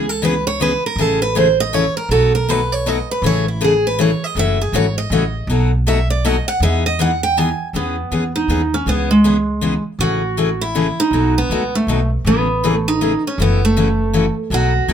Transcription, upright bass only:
Already playing: C#2
0.96 A1
2.09 B1
3.22 A1
4.35 F#1
4.72 G#1
5.10 A1
5.47 B1
6.60 E2
7.73 E2
8.11 E2
8.48 D#2
8.86 C#2
9.99 A1
11.11 B1
11.50 C#2
11.87 B1
12.25 A1
13.38 F#1
14.50 B1
14.88 C#2

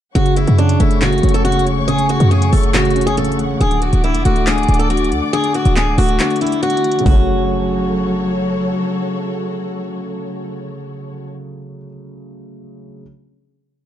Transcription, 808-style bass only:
0.15 F#1
0.48 F#2
0.80 F#1
1.23 F#1
2.20 F#2
2.53 F#1
3.61 D1
3.93 D1
4.15 E1
4.25 D1
4.69 D1
5.12 D2
5.66 D1
5.98 D1
7.06 F#1

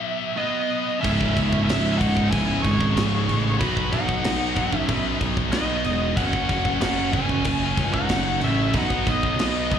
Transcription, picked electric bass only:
1.04 C#1
1.37 C#1
1.70 C#1
2.01 C#1
2.33 C#1
2.64 G#1
2.96 C#1
3.29 A1
3.61 B1
3.93 B1
4.25 B1
4.56 B1
4.89 B1
5.21 B1
5.52 B1
5.85 E1
6.17 F#1
6.49 F#1
6.81 F#1
7.13 F#1
7.45 F#1
7.78 C#2
8.09 F#1
8.41 A1
8.74 B1
9.08 B1
9.36 B1
9.72 B1

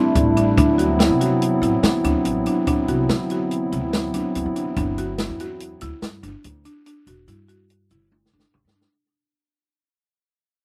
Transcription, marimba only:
Already playing: C4
0.37 D4
0.58 D4
0.78 F#4
0.99 E4
1.21 F#4
1.63 E4
2.05 D4
2.47 D4
2.68 D4
2.89 F#4
3.10 E4
3.31 F#4
3.72 E4
4.14 D4
4.56 D4
4.77 D4
4.98 F#4
5.20 E4
5.40 F#4
5.82 E4
6.23 D4
6.65 D4
6.86 D4
7.08 F#4
7.28 E4
7.48 F#4
7.91 E4
8.34 D4
8.76 D4

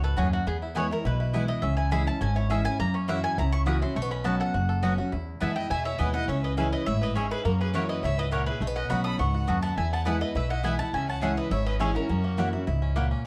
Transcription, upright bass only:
Already playing: C#2
0.17 D#2
0.46 E2
1.05 B1
1.63 C#2
2.21 G#1
2.79 F#2
3.38 C#2
3.95 B1
4.54 F#1
5.13 E2
5.41 F#2
5.70 E2
5.99 D#2
6.28 C#2
6.87 G#1
7.45 F#2
8.03 C#2
8.60 B1
8.90 B1
9.19 C#2
9.48 D#2
9.77 E2
10.35 B1
10.93 C#2
11.51 G#1
12.09 F#2
12.68 C#2

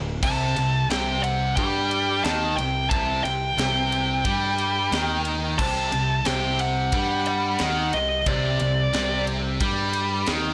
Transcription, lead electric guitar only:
0.23 A5
0.91 G5
1.23 F#5
1.56 G5
2.24 A5
2.57 G5
2.90 A5
3.24 G5
5.58 A5
6.27 G5
6.61 F#5
7.28 F#5
7.94 D#5
8.28 D5

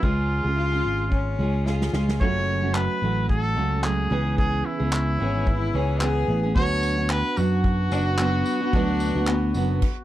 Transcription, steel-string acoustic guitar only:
0.02 C#3 G#3 C#4 F4 G#4
0.45 C#4 F4 G#4
0.71 C#4 F4 G#4
1.39 G#3 C#4 F4 G#4
1.66 G#3 C#4 F4 G#4
1.93 G#3 C#4 F4 G#4
2.20 F#2 C#3 F#3 A3 C#4 F#4
2.62 F#3 A3 C#4 F#4
3.01 F#3 A3 C#4 F#4
3.55 F#3 A3 C#4 F#4
3.83 F#3 A3 C#4 F#4
4.10 C#3 E3 B3 C#4 G#4
4.79 B3 C#4 G#4
5.19 E3 B3 C#4 G#4
5.73 E3 B3 C#4 G#4
6.01 E3 B3 C#4 G#4
6.43 B3 C#4 G#4
6.56 D3 F#3 B3 D4 F#4
6.97 B3 D4 F#4
7.37 F#3 B3 D4 F#4
7.91 F#3 B3 D4 F#4
8.18 F#3 B3 D4 F#4
8.61 B3 D4 F#4
8.74 D3 F#3 B3 D4 F#4
9.16 B3 D4 F#4
9.55 F#3 B3 D4 F#4

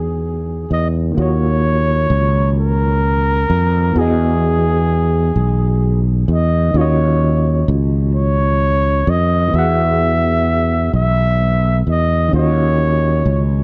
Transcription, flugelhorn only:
Already playing: G#4
0.72 D#5
1.20 C#5
2.59 A#4
3.98 G#4
6.31 D#5
6.77 C#5
8.15 C#5
9.10 D#5
9.56 E5
10.95 E5
11.89 D#5
12.35 C#5

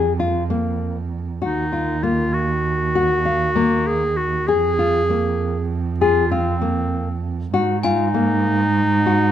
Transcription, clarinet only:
1.41 D#4
2.03 F4
2.33 F#4
3.87 G#4
4.17 F#4
4.47 G#4
5.99 F4
6.31 C4
7.53 D#4

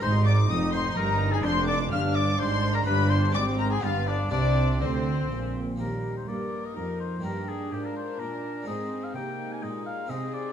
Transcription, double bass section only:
0.03 G#1
0.50 F1
0.97 G1
1.45 F1
1.92 G1
2.39 G#1
2.87 G1
3.35 G#1
3.83 G1
4.32 C2
4.81 D2
5.31 A#1

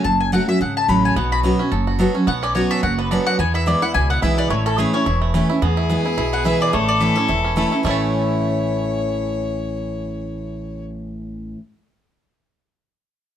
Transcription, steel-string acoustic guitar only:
0.04 F#2
0.32 F#3 A3 C#4 F#4
0.48 C#4 F#4
0.61 C#3
0.88 F#3 A3 C#4 F#4
1.16 B2
1.43 F#3 B3 C#4 F#4
1.59 C#4 F#4
1.72 F#2
1.99 F#3 B3 C#4 F#4
2.14 C#4 F#4
2.27 B2
2.55 F#3 B3 C#4 F#4
2.83 F#2
3.11 F#3 B3 C#4 F#4
3.39 E2
3.66 E3 G#3 B3 E4
3.82 B3 E4
3.95 B2
4.22 E3 G#3 B3 E4
4.50 A2
4.78 E3 A3 C#4 E4
4.93 C#4 E4
5.06 E2
5.34 E3 A3 C#4 E4
5.49 C#4 E4
5.62 E2
5.89 E3 G#3 B3 E4
6.05 B3 E4
6.18 B2
6.44 E3 G#3 B3 E4
6.73 A2
7.00 E3 A3 C#4 E4
7.16 C#4 E4
7.28 E2
7.56 E3 A3 C#4 E4
7.71 C#4 E4
7.83 A2 E3 A3 C#4 E4

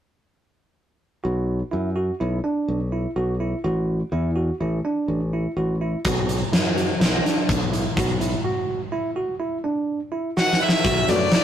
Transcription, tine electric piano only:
1.24 F#4
1.71 E4
1.96 F#4
2.20 E4
2.44 D4
2.92 E4
3.16 F#4
3.40 E4
3.64 F#4
4.12 E4
4.36 F#4
4.60 E4
4.85 D4
5.33 E4
5.57 F#4
5.81 E4
6.05 F#4
6.52 E4
6.76 F#4
7.00 E4
7.24 D4
7.72 E4
7.97 F#4
8.20 E4
8.44 F#4
8.92 E4
9.16 F#4
9.40 E4
9.64 D4
10.12 E4
10.37 F#4
10.60 E4
10.84 F#4
11.34 E4

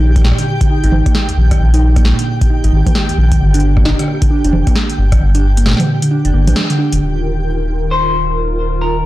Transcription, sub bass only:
Already playing: A#1
0.84 G#1
0.92 G#1
1.37 A#1
1.60 A#1
2.64 G#1
2.73 G#1
3.18 A#1
3.40 G1
4.44 F1
4.53 F1
4.98 G1
5.21 G1
6.25 F1
6.33 G1
6.47 A#1
6.93 F1
7.01 D#1

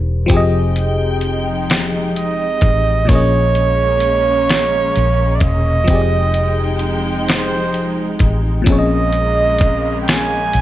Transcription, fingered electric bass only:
Already playing: E1
0.31 F1
2.63 A1
3.10 A#1
4.97 A#1
5.42 E1
5.89 F1
8.21 A1
8.68 A#1
10.55 A#1

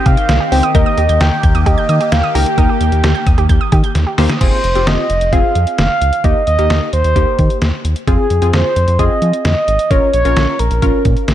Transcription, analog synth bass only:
0.06 C3
0.29 C2
0.52 C#2
0.75 D#2
0.98 D#2
1.09 D#2
1.21 D#2
1.43 D#2
1.55 D#2
1.66 D#2
1.89 D#3
2.12 D#2
2.35 C#2
2.58 D#2
2.81 D#2
2.92 D#2
3.04 D#2
3.27 D#2
3.38 D#2
3.49 D#2
3.72 D#3
3.95 D#2
4.18 D#2
4.41 F1
4.64 F1
4.75 F1
4.87 F1
5.10 F1
5.21 F1
5.33 F1
5.55 F2
5.79 F1
6.01 C#2
6.24 D#2
6.47 D#2
6.59 D#2
6.70 D#2
6.93 D#2
7.04 D#2
7.16 D#2
7.39 D#3
7.62 D#2
7.85 D#2
8.07 F2
8.31 F2
8.42 F2
8.53 F2
8.76 F2
8.88 F2
8.99 F2
9.22 F3
9.45 F2
9.68 G#1
9.91 A#1
10.14 A#1
10.25 A#1
10.37 A#1
10.60 A#1
10.71 A#1
10.82 A#1
11.05 A#2
11.28 A#1

